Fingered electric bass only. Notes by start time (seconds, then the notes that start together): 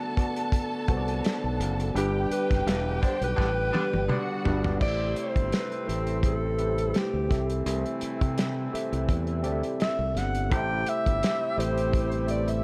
0.89 C2
1.44 B1
1.60 F#1
1.95 G1
2.31 muted fingered electric bass stroke
2.51 F#1
2.66 E1
3.21 B1
3.38 A1
3.94 G1
4.46 G1
4.82 A1
5.36 G1
5.89 A1
7.14 D2
7.31 C2
7.66 C2
8.02 muted fingered electric bass stroke
8.21 C3
8.74 muted fingered electric bass stroke
8.92 C2
9.09 E2
9.44 D2
9.99 C2
10.15 G1
10.52 A1
11.07 G1
11.58 A1